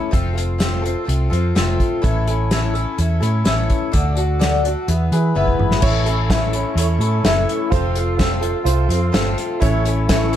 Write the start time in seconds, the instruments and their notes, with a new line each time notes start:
Already playing: twelve-string acoustic guitar A2 E3 A3 C#4 E4 A4
0.11 fingered electric bass F1, twelve-string acoustic guitar F3 A3 C4 F4 A4, kick, closed hi-hat
0.34 twelve-string acoustic guitar C4 F4 A4, closed hi-hat
0.58 twelve-string acoustic guitar F3 A3 C4 F4 A4, snare, closed hi-hat
0.82 twelve-string acoustic guitar C4 F4 A4, closed hi-hat
1.04 fingered electric bass C2, twelve-string acoustic guitar A3 C4 F4 A4
1.09 closed hi-hat
1.30 fingered electric bass F2, twelve-string acoustic guitar C4 F4 A4, closed hi-hat
1.55 fingered electric bass F1, twelve-string acoustic guitar F3 A3 C4 F4 A4, snare, closed hi-hat
1.80 kick, closed hi-hat
2.01 fingered electric bass A1, twelve-string acoustic guitar A2 E3 A3 C#4 E4 A4, kick, closed hi-hat
2.27 twelve-string acoustic guitar A3 C#4 E4 A4, closed hi-hat
2.51 twelve-string acoustic guitar A2 E3 A3 C#4 E4 A4, snare, closed hi-hat
2.74 twelve-string acoustic guitar A3 C#4 E4 A4, closed hi-hat
2.98 fingered electric bass E2, twelve-string acoustic guitar A3 C#4 E4 A4, closed hi-hat
3.21 fingered electric bass A2, twelve-string acoustic guitar A3 C#4 E4 A4, closed hi-hat
3.44 fingered electric bass A1, twelve-string acoustic guitar A2 E3 A3 C#4 E4 A4, snare, closed hi-hat
3.70 kick, closed hi-hat
3.92 fingered electric bass D2, twelve-string acoustic guitar D3 A3 D4 F#4 A4, kick, closed hi-hat
4.15 twelve-string acoustic guitar D4 F#4 A4, closed hi-hat
4.39 twelve-string acoustic guitar D3 A3 D4 F#4 A4, snare, closed hi-hat
4.64 twelve-string acoustic guitar D4 F#4 A4, closed hi-hat
4.87 fingered electric bass E2, twelve-string acoustic guitar B3 E4 G#4 B4, closed hi-hat
5.12 fingered electric bass E3, twelve-string acoustic guitar E4 G#4 B4, closed hi-hat
5.35 fingered electric bass F#1, twelve-string acoustic guitar E3 B3 E4 G#4 B4, high tom
5.48 kick
5.59 fingered electric bass G#1, mid tom
5.71 snare
5.81 fingered electric bass A1, twelve-string acoustic guitar A2 E3 A3 C#4 E4 A4, grand piano E4 A4 C#5, tonewheel organ A4 E5 C#6, kick, crash
6.06 twelve-string acoustic guitar A3 C#4 E4 A4, closed hi-hat
6.29 twelve-string acoustic guitar A2 E3 A3 C#4 E4 A4, grand piano E4 A4 E5, kick, snare, closed hi-hat
6.53 twelve-string acoustic guitar A3 C#4 E4 A4, grand piano E4 A4 C#5, closed hi-hat
6.75 fingered electric bass E2, twelve-string acoustic guitar A3 C#4 E4, grand piano E4 A4 C#5, closed hi-hat
6.79 twelve-string acoustic guitar A4
6.99 fingered electric bass A2, twelve-string acoustic guitar C#4 E4 A4, closed hi-hat
7.03 twelve-string acoustic guitar A3
7.24 fingered electric bass F#1, twelve-string acoustic guitar A2 E3 A3 C#4 E4 A4, grand piano E4 A4 E5, snare, closed hi-hat
7.49 closed hi-hat
7.70 fingered electric bass F1, twelve-string acoustic guitar F3 A3 C4 F4 A4, grand piano F4 A4 C5, tonewheel organ F5 C6, kick, closed hi-hat
7.95 twelve-string acoustic guitar C4 F4 A4, closed hi-hat
8.17 twelve-string acoustic guitar F3 A3 C4 F4, grand piano F4 A4 C5, kick, snare, closed hi-hat
8.21 twelve-string acoustic guitar A4
8.41 twelve-string acoustic guitar C4 F4 A4, grand piano F4 A4 C5, closed hi-hat
8.64 fingered electric bass C2, twelve-string acoustic guitar A3 C4 F4 A4, grand piano F4 A4 C5, closed hi-hat
8.88 fingered electric bass F2, twelve-string acoustic guitar C4 F4 A4, closed hi-hat
9.12 fingered electric bass G1, twelve-string acoustic guitar F3 A3 C4 F4 A4, grand piano F4 A4 C5, snare, closed hi-hat
9.38 closed hi-hat
9.60 fingered electric bass A1, twelve-string acoustic guitar A2 E3 A3 C#4 E4 A4, grand piano E4 A4 C#5, tonewheel organ E5 C#6, kick, closed hi-hat
9.85 twelve-string acoustic guitar A3 C#4 E4 A4, closed hi-hat
10.08 twelve-string acoustic guitar A2 E3 A3 C#4 E4 A4, grand piano E4 A4 C#5, kick, snare, closed hi-hat
10.33 grand piano E4 A4, closed hi-hat